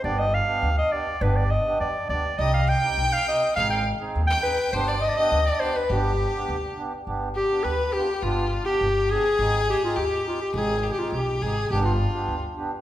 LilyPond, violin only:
\new Staff \with { instrumentName = "Violin" } { \time 2/4 \tempo 4 = 103 r2 | r2 | ees''8 g''4. | f''8 r8. g''8. |
c''16 d''16 ees''16 ees''8 d''32 ees''32 d''16 b'16 | g'4. r8 | r8 g'8 b'8 g'8 | f'8. g'8. aes'8~ |
aes'4 g'4 | aes'8 g'32 g'16. g'8 aes'8 | g'16 f'4 r8. | }